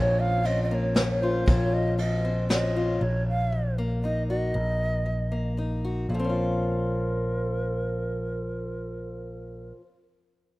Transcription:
0.00 1.44 A#1 medium
0.00 0.40 A#2 medium
0.00 0.44 A#2 medium
0.00 0.42 F3 medium
0.00 0.44 C4 medium
0.00 0.44 C#4 medium
0.00 0.45 F4 medium
0.00 0.21 C#5 medium
0.20 0.47 F5 medium
0.43 0.93 F3 medium
0.43 0.91 F3 medium
0.43 0.95 C4 medium
0.43 0.95 C#4 medium
0.43 0.96 F4 medium
0.43 0.63 D#5 medium
0.43 ride medium
0.63 0.70 D#5 medium
0.70 2.24 A#3 medium
0.70 0.75 D#5 medium
0.74 1.22 C#5 medium
0.95 1.42 F2 medium
0.95 1.21 F3 medium
0.95 1.21 C4 medium
0.95 1.21 C#4 medium
0.95 2.28 C#4 medium
0.95 1.19 F4 medium
0.95 snare medium
0.95 ride medium
1.20 1.46 C4 soft
1.20 1.46 C#4 soft
1.20 1.46 F4 soft
1.20 2.75 F4 soft
1.20 1.49 C5 medium
1.46 2.98 A#1 medium
1.46 1.98 A#2 medium
1.46 1.93 A#2 medium
1.46 1.97 F3 medium
1.46 1.99 C4 medium
1.46 1.99 C#4 medium
1.46 1.99 F4 medium
1.46 1.75 C#5 medium
1.46 kick medium
1.46 ride medium
1.73 1.98 D#5 medium
1.98 2.48 F3 medium
1.98 2.45 F3 medium
1.98 2.50 C4 medium
1.98 2.51 F4 medium
1.98 2.46 D#5 medium
1.98 ride medium
2.25 2.98 C4 medium
2.49 2.96 F2 medium
2.49 2.75 F3 medium
2.49 2.75 C4 medium
2.49 2.76 C#4 medium
2.49 4.04 C#4 soft
2.49 2.74 F4 medium
2.49 3.04 D#5 medium
2.49 snare medium
2.49 ride medium
2.75 3.01 C4 soft
2.75 3.02 C#4 soft
2.75 3.01 F4 soft
2.75 3.01 F4 medium
3.01 4.52 A#1 medium
3.01 3.47 A#2 medium
3.01 3.27 C#5 medium
3.29 3.74 F5 medium
3.52 3.98 F#3 medium
3.78 5.31 A#3 medium
4.03 4.50 A#2 medium
4.03 4.52 D#4 soft
4.03 4.27 D#5 medium
4.28 4.52 F#4 medium
4.28 5.53 D#5 medium
4.54 6.06 A#1 medium
4.54 5.01 A#2 medium
5.06 5.52 F#3 medium
5.32 6.06 A#3 soft
5.57 6.04 A#2 soft
5.57 6.06 D#4 soft
5.84 6.06 F#4 soft
6.09 9.71 A#1 medium
6.09 9.76 A#2 medium
6.09 6.25 A4 medium
6.14 9.81 F3 soft
6.19 9.86 C4 medium
6.24 9.91 C#4 soft
6.24 9.72 A#4 medium
6.29 9.96 F4 soft

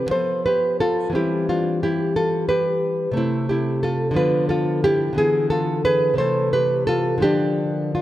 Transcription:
0.06 0.09 D3 medium
0.06 1.09 F3 soft
0.06 1.10 B3 soft
0.11 0.44 A4 medium
0.11 0.44 C5 medium
0.46 0.78 G4 medium
0.46 0.78 B4 medium
0.80 1.12 F4 medium
0.80 1.13 A4 medium
1.10 3.11 E3 medium
1.10 3.12 G3 soft
1.10 3.12 C4 medium
1.15 1.46 E4 medium
1.15 1.47 G4 medium
1.49 1.80 D4 medium
1.49 1.81 F4 medium
1.83 2.15 E4 medium
1.83 2.15 G4 medium
2.16 2.48 F4 medium
2.16 2.48 A4 medium
2.49 3.13 G4 medium
2.49 3.14 B4 medium
3.12 4.11 C3 medium
3.12 4.11 A3 medium
3.17 3.48 C4 medium
3.17 3.49 E4 loud
3.49 3.81 E4 medium
3.49 3.81 G4 medium
3.83 4.14 F4 medium
3.83 4.15 A4 medium
4.11 5.11 D3 medium
4.11 5.12 F3 medium
4.11 5.13 B3 medium
4.16 4.47 F4 medium
4.16 4.48 B4 loud
4.49 4.81 F4 medium
4.49 4.81 A4 medium
4.84 5.15 E4 medium
4.84 5.16 G4 loud
5.13 6.13 D3 medium
5.13 6.14 E3 medium
5.13 6.15 B3 medium
5.18 5.49 E4 medium
5.18 5.50 G#4 loud
5.50 5.83 F4 medium
5.50 5.83 A4 loud
5.85 6.17 G#4 medium
5.85 6.17 B4 loud
6.14 7.16 C3 medium
6.14 7.17 E3 medium
6.14 7.17 A3 medium
6.18 6.51 A4 medium
6.18 6.51 C5 loud
6.53 6.85 G4 medium
6.53 6.86 B4 loud
6.87 7.20 F4 medium
6.87 7.20 A4 loud
7.18 8.02 D3 medium
7.18 8.02 F3 medium
7.18 8.02 A#3 medium
7.22 7.90 D4 medium
7.22 7.91 G4 loud
7.95 8.02 D4 medium
7.95 8.02 F4 medium

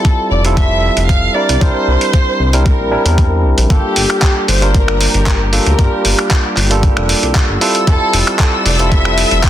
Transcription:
0.00 0.41 G3 medium
0.00 0.41 C4 medium
0.00 0.42 E4 medium
0.00 0.42 F4 medium
0.00 0.27 A4 medium
0.00 0.42 A4 loud
0.05 kick loud
0.05 closed hi-hat soft
0.31 0.90 F1 loud
0.31 0.43 D5 medium
0.44 1.32 G3 medium
0.44 1.32 C4 medium
0.44 1.33 E4 medium
0.44 1.33 F4 medium
0.44 1.33 A4 loud
0.44 closed hi-hat medium
0.57 1.06 E5 loud
0.57 kick loud
0.57 closed hi-hat soft
0.97 1.29 F1 medium
0.97 closed hi-hat medium
1.09 1.36 F5 loud
1.09 kick loud
1.09 closed hi-hat soft
1.35 1.58 G3 medium
1.35 1.58 C4 medium
1.35 1.59 D4 medium
1.35 1.59 E4 medium
1.35 1.59 A#4 medium
1.35 1.62 D5 medium
1.49 1.57 C2 medium
1.49 closed hi-hat medium
1.60 1.71 C2 medium
1.60 2.50 G3 medium
1.60 2.50 C4 medium
1.60 2.50 D4 medium
1.60 2.50 E4 medium
1.60 2.51 A#4 loud
1.60 2.66 C5 loud
1.60 kick loud
1.60 closed hi-hat soft
1.88 1.97 C2 medium
2.01 closed hi-hat medium
2.13 kick loud
2.13 closed hi-hat soft
2.40 2.72 C2 loud
2.53 2.89 G3 medium
2.53 2.89 C4 medium
2.53 2.89 D4 medium
2.53 2.90 E4 medium
2.53 2.90 A#4 loud
2.53 closed hi-hat medium
2.66 3.40 A#4 medium
2.66 kick loud
2.66 closed hi-hat soft
2.80 2.96 A#1 medium
2.91 3.02 G3 medium
2.91 3.02 C4 medium
2.91 3.02 D4 medium
2.91 3.02 E4 medium
2.91 3.03 A#4 loud
3.04 3.46 E2 medium
3.04 3.67 G3 medium
3.04 3.67 C4 medium
3.04 3.67 D4 medium
3.04 3.67 E4 medium
3.04 3.68 A#4 loud
3.04 closed hi-hat medium
3.18 kick loud
3.18 closed hi-hat soft
3.44 3.53 C2 medium
3.58 3.66 A#1 loud
3.58 closed hi-hat medium
3.69 3.79 G1 medium
3.69 4.58 G3 medium
3.69 4.59 A#3 medium
3.69 4.59 D4 medium
3.69 4.59 F4 medium
3.69 7.58 G4 medium
3.69 4.45 G4 medium
3.69 4.59 A4 loud
3.69 kick loud
3.69 closed hi-hat soft
3.96 4.06 G1 medium
3.96 open hi-hat loud
4.10 finger snap medium
4.10 closed hi-hat medium
4.22 kick loud
4.22 clap loud
4.22 closed hi-hat soft
4.48 5.07 G1 medium
4.48 4.75 C5 loud
4.48 open hi-hat medium
4.61 5.49 G3 medium
4.61 5.50 A#3 medium
4.61 5.50 D4 medium
4.61 5.50 F4 medium
4.61 5.50 A#4 loud
4.61 closed hi-hat medium
4.75 5.51 A#4 loud
4.75 kick loud
4.75 closed hi-hat soft
4.88 finger snap medium
5.01 open hi-hat loud
5.14 5.59 G1 medium
5.14 closed hi-hat medium
5.26 kick loud
5.26 clap loud
5.26 closed hi-hat soft
5.52 5.76 G3 medium
5.52 5.76 A#3 medium
5.52 5.76 D4 medium
5.52 5.76 F4 medium
5.52 5.76 A4 loud
5.52 6.27 A#4 medium
5.52 open hi-hat medium
5.66 5.75 D2 loud
5.66 closed hi-hat medium
5.78 5.88 G1 loud
5.78 6.67 G3 medium
5.78 6.67 A#3 medium
5.78 6.68 D4 medium
5.78 6.68 F4 medium
5.78 6.68 A#4 loud
5.78 kick loud
5.78 closed hi-hat medium
6.05 6.14 G1 medium
6.05 open hi-hat medium
6.19 finger snap medium
6.19 closed hi-hat medium
6.31 kick loud
6.31 clap loud
6.31 closed hi-hat medium
6.57 6.90 G1 loud
6.57 clap soft
6.57 open hi-hat medium
6.70 7.58 G3 loud
6.70 7.58 A#3 medium
6.70 7.59 D4 medium
6.70 7.59 F4 medium
6.70 7.59 A4 loud
6.70 closed hi-hat medium
6.83 kick loud
6.83 closed hi-hat medium
6.97 7.14 F1 medium
6.97 finger snap medium
7.09 open hi-hat loud
7.23 7.40 C2 loud
7.23 closed hi-hat medium
7.35 kick medium
7.35 clap loud
7.35 closed hi-hat soft
7.49 7.57 G1 medium
7.61 7.84 G3 medium
7.61 7.84 C4 medium
7.61 7.85 E4 medium
7.61 7.85 F4 medium
7.61 7.85 A4 loud
7.61 9.50 A4 medium
7.61 9.50 E6 medium
7.61 open hi-hat medium
7.75 closed hi-hat medium
7.87 7.97 F1 medium
7.87 8.76 G3 medium
7.87 8.76 C4 medium
7.87 8.76 E4 medium
7.87 8.77 F4 medium
7.87 8.36 A4 loud
7.87 8.77 A4 loud
7.87 kick loud
7.87 closed hi-hat medium
8.13 8.23 F1 medium
8.13 open hi-hat medium
8.27 finger snap medium
8.27 closed hi-hat medium
8.39 kick medium
8.39 clap loud
8.39 closed hi-hat medium
8.66 9.24 F1 loud
8.66 8.90 D5 loud
8.66 open hi-hat medium
8.78 9.50 G3 loud
8.78 9.50 C4 medium
8.78 9.50 E4 medium
8.78 9.50 F4 medium
8.78 9.50 A4 loud
8.78 closed hi-hat medium
8.92 9.40 E5 loud
8.92 kick loud
8.92 closed hi-hat medium
9.05 finger snap medium
9.18 open hi-hat loud
9.31 9.50 F1 medium
9.31 closed hi-hat medium
9.44 9.50 G5 loud
9.44 kick medium
9.44 clap loud
9.44 closed hi-hat medium

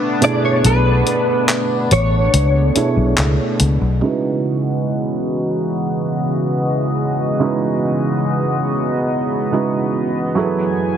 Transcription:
0.00 0.18 B2 medium
0.00 0.18 A3 medium
0.00 3.99 A3 medium
0.00 3.99 B3 medium
0.00 0.19 D4 medium
0.00 3.99 D4 loud
0.00 0.19 E4 medium
0.00 0.23 B4 medium
0.00 0.23 D5 medium
0.21 2.71 B2 medium
0.21 2.72 A3 medium
0.21 2.72 D4 medium
0.21 2.73 E4 medium
0.21 0.44 D5 loud
0.21 closed hi-hat medium
0.25 2.73 G#4 medium
0.45 0.64 C#5 medium
0.65 1.01 B1 loud
0.65 1.92 B4 loud
0.65 closed hi-hat medium
1.07 closed hi-hat medium
1.49 clap loud
1.49 closed hi-hat medium
1.91 2.28 A1 loud
1.91 3.57 C#5 medium
1.91 closed hi-hat medium
2.33 2.70 C#2 medium
2.33 closed hi-hat medium
2.75 4.02 B2 medium
2.75 4.03 A3 soft
2.75 4.03 D4 soft
2.75 4.02 E4 medium
2.75 4.03 G#4 medium
2.75 muted fingered electric bass stroke soft
2.75 closed hi-hat medium
2.97 3.15 B1 medium
3.17 3.36 C#2 loud
3.17 clap loud
3.17 closed hi-hat medium
3.60 3.79 C#2 medium
3.60 closed hi-hat medium
3.81 4.00 B1 medium
4.01 7.36 C#3 medium
4.01 10.32 C#3 medium
4.01 10.32 E3 medium
4.01 7.36 G#3 medium
4.01 10.32 G#3 medium
4.01 10.97 B3 medium
4.01 7.37 D#4 medium
4.01 7.37 E4 medium
4.01 10.32 F#4 medium
4.01 7.37 F#4 medium
4.01 10.32 D#5 medium
4.05 7.38 B4 medium
7.39 9.47 C#3 medium
7.39 9.48 G#3 medium
7.39 9.48 D#4 medium
7.39 9.48 E4 medium
7.39 9.49 F#4 medium
7.43 9.49 B4 medium
9.52 10.36 C#3 medium
9.52 10.36 G#3 medium
9.52 10.37 D#4 medium
9.52 10.35 E4 medium
9.52 10.37 F#4 medium
9.52 10.37 B4 medium
10.35 10.97 F#2 medium
10.35 10.97 E3 medium
10.35 10.97 F#3 medium
10.35 10.97 A3 medium
10.35 10.97 E4 medium
10.35 10.97 G#4 medium
10.35 10.97 A4 medium
10.35 10.97 G#5 medium
10.39 10.97 B4 medium

